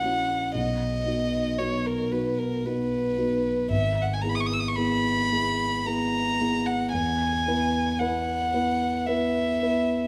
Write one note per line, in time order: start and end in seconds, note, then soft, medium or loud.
0.00 0.04 C#4 soft
0.00 0.51 C#4 soft
0.00 0.04 E4 soft
0.00 0.51 E4 soft
0.00 0.04 F#4 soft
0.00 0.55 F#5 medium
0.04 0.51 F#4 soft
0.55 1.05 B1 soft
0.55 1.60 D#5 medium
1.06 1.54 B3 soft
1.06 1.54 D#4 soft
1.06 1.55 F#4 soft
1.59 2.08 B3 soft
1.59 2.08 D#4 soft
1.59 2.08 F#4 soft
1.59 1.88 C#5 medium
1.87 2.13 A#4 medium
2.12 2.61 B3 soft
2.12 2.61 D#4 soft
2.12 2.61 F#4 soft
2.12 2.40 B4 medium
2.39 2.67 A#4 medium
2.65 3.14 B3 soft
2.65 3.14 D#4 soft
2.65 3.14 F#4 soft
2.65 3.70 B4 medium
3.17 3.66 B3 soft
3.17 3.66 D#4 soft
3.17 3.66 F#4 soft
3.70 4.22 G#1 soft
3.70 4.04 E5 medium
4.02 4.15 F#5 soft
4.13 4.23 G#5 soft
4.22 4.73 B3 soft
4.22 4.73 E4 soft
4.22 4.74 G#4 soft
4.22 4.31 A#5 soft
4.29 4.37 B5 soft
4.35 4.42 D#6 soft
4.41 4.48 C#6 soft
4.46 4.55 D#6 medium
4.54 4.61 E6 soft
4.60 4.70 D#6 soft
4.68 4.77 C#6 soft
4.76 5.28 B3 soft
4.76 5.28 E4 soft
4.76 5.28 G#4 soft
4.76 5.88 B5 medium
5.32 5.83 B3 soft
5.32 5.83 E4 soft
5.32 5.83 G#4 soft
5.86 6.36 B3 soft
5.86 6.36 E4 soft
5.86 6.37 G#4 soft
5.86 6.68 A#5 medium
6.41 6.90 B3 soft
6.41 6.90 E4 soft
6.41 6.91 G#4 soft
6.66 6.92 F#5 medium
6.93 7.45 E2 soft
6.93 8.01 G#5 medium
7.47 7.96 B3 soft
7.47 7.97 E4 soft
7.47 7.97 B4 soft
8.00 8.50 B3 soft
8.00 8.50 E4 soft
8.00 8.50 B4 soft
8.00 9.08 F#5 medium
8.54 9.04 B3 soft
8.54 9.04 E4 soft
8.54 9.04 B4 soft
9.07 9.58 B3 soft
9.07 9.58 E4 soft
9.07 9.58 B4 soft
9.07 10.07 E5 medium
9.62 10.07 B3 soft
9.62 10.07 E4 soft
9.62 10.07 B4 soft